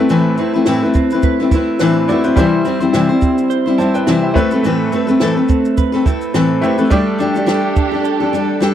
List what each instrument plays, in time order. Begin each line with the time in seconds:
Already playing: grand piano A3 C4 E4 B4, clean electric guitar A4, steel-string acoustic guitar B4
0.00 steel-string acoustic guitar A3 E4
0.09 steel-string acoustic guitar A2 E3 A3 C4 E4 B4, shaker
0.37 steel-string acoustic guitar A3 C4 E4 B4, shaker
0.53 steel-string acoustic guitar A3 C4 E4 B4
0.65 steel-string acoustic guitar A2 E3 A3 C4 E4 B4, snare, shaker
0.82 steel-string acoustic guitar A3 C4 E4 B4
0.94 clean electric guitar C4, kick, shaker
1.10 steel-string acoustic guitar E4 B4, shaker
1.15 steel-string acoustic guitar A3 C4
1.22 clean electric guitar B4, kick, shaker
1.39 steel-string acoustic guitar C4 E4 B4, snare
1.43 steel-string acoustic guitar A3
1.51 steel-string acoustic guitar A3 C4 E4, kick, shaker
1.56 steel-string acoustic guitar B4
1.79 steel-string acoustic guitar A2 E3 A3 C4 E4 B4, grand piano D4 B4, snare, shaker
2.09 steel-string acoustic guitar A3 C4 E4 B4, grand piano F#4 D5, shaker
2.24 steel-string acoustic guitar A3 C4 E4 B4, grand piano E4 C5, shaker
2.36 steel-string acoustic guitar C3 E3 G3 C4 E4, grand piano G3 C4 E4 C5, kick, shaker
2.40 steel-string acoustic guitar C5
2.65 steel-string acoustic guitar G3 C4 E4 C5, shaker
2.80 steel-string acoustic guitar G3 C4 E4 C5, shaker
2.93 steel-string acoustic guitar C3 E3 G3 C4 E4 C5, snare, shaker
3.09 steel-string acoustic guitar G3 C4 E4 C5
3.21 clean electric guitar C4, kick, shaker
3.38 shaker
3.50 clean electric guitar C5, shaker
3.66 steel-string acoustic guitar G3 C4 E4 C5, snare
3.78 steel-string acoustic guitar G3 C4 E4 C5, grand piano C5 A5, shaker
3.94 grand piano B4 G5, shaker
4.07 steel-string acoustic guitar C3 E3 G3 C4 E4 C5, snare, shaker
4.23 grand piano G4 E5
4.34 grand piano A3 C4 E4 B4, steel-string acoustic guitar A3 C4 A4, kick, shaker
4.38 steel-string acoustic guitar B4
4.51 steel-string acoustic guitar C4 A4 B4, shaker
4.55 steel-string acoustic guitar A3
4.64 steel-string acoustic guitar A2 E3 A3 C4 A4 B4, shaker
4.92 steel-string acoustic guitar A3 C4 A4 B4, shaker
5.07 steel-string acoustic guitar A3 C4 A4 B4, shaker
5.20 steel-string acoustic guitar A2 E3 A3 C4 A4 B4, clean electric guitar E4, snare, shaker
5.35 steel-string acoustic guitar A3 C4 A4 B4
5.48 clean electric guitar C4, kick, shaker
5.65 shaker
5.77 clean electric guitar B4, kick, shaker
5.92 steel-string acoustic guitar A3 C4 A4 B4, snare
6.05 steel-string acoustic guitar A3 C4 A4 B4, clean electric guitar E4, kick, shaker
6.21 shaker
6.34 steel-string acoustic guitar A2 E3 A3 C4 A4 B4, snare, shaker
6.61 grand piano A3 C4 E4 G4, steel-string acoustic guitar A3 C4 A4, clean electric guitar E4, shaker
6.66 steel-string acoustic guitar B4
6.78 steel-string acoustic guitar A3 C4 A4 B4, shaker
6.90 steel-string acoustic guitar G3 D4 G4 A4, grand piano A3 D4 G4 D5, string section D4 G4 A4, kick, shaker
7.19 steel-string acoustic guitar G3 D4 G4 A4, shaker
7.34 steel-string acoustic guitar D4 G4 A4, shaker
7.46 steel-string acoustic guitar G3 D4 G4 A4, snare, shaker
7.76 clean electric guitar D4, kick, shaker
7.91 steel-string acoustic guitar D4 G4 A4
8.04 clean electric guitar A4, shaker
8.20 steel-string acoustic guitar D4 G4 A4
8.33 steel-string acoustic guitar G3 D4 G4 A4, shaker
8.60 steel-string acoustic guitar G3 D4 G4 A4, snare, shaker